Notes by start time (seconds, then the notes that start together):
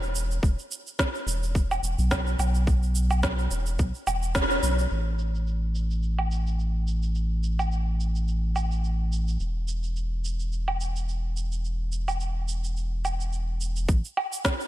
Already playing: E1
0.03 cabasa
0.15 cabasa
0.31 cabasa
0.43 E1, kick, cabasa
0.59 cabasa
0.71 cabasa
0.87 cabasa
0.99 kick, snare, cabasa
1.15 cabasa
1.27 E1, cabasa
1.43 cabasa
1.55 kick, cabasa
1.71 cabasa, low woodblock
1.83 E1, cabasa
1.99 B1, cabasa
2.11 kick, snare, cabasa, low woodblock
2.27 cabasa
2.39 B1, cabasa, low woodblock
2.55 cabasa
2.67 kick, cabasa
2.83 cabasa
2.95 cabasa
3.11 cabasa, low woodblock
3.23 kick, snare, cabasa
3.39 cabasa
3.51 E1, cabasa
3.66 cabasa
3.79 B1, kick, cabasa
3.95 cabasa
4.07 E1, cabasa, low woodblock
4.23 cabasa
4.35 kick, snare, cabasa
4.50 cabasa
4.63 B1, cabasa
4.79 cabasa
4.91 A1, cabasa
5.19 cabasa
5.35 cabasa
5.47 cabasa
5.75 cabasa
5.91 cabasa
6.03 cabasa
6.19 low woodblock
6.31 cabasa
6.47 cabasa
6.59 cabasa
6.87 cabasa
7.03 cabasa
7.15 cabasa
7.43 cabasa
7.59 cabasa, low woodblock
7.72 cabasa
8.00 cabasa
8.15 cabasa
8.28 cabasa
8.56 cabasa, low woodblock
8.72 cabasa
8.84 cabasa
9.12 cabasa
9.28 cabasa
9.40 E1, cabasa
9.68 cabasa
9.83 cabasa
9.96 cabasa
10.25 cabasa
10.40 cabasa
10.52 cabasa
10.68 low woodblock
10.81 cabasa
10.96 cabasa
11.09 cabasa
11.37 cabasa
11.52 cabasa
11.65 cabasa
11.92 cabasa
12.08 cabasa, low woodblock
12.20 cabasa
12.48 cabasa
12.64 cabasa
12.77 cabasa
13.05 cabasa, low woodblock
13.20 cabasa
13.33 cabasa
13.61 cabasa
13.76 cabasa
13.89 A1, kick, cabasa
14.05 cabasa
14.17 low woodblock
14.33 cabasa
14.45 kick, snare, cabasa
14.60 cabasa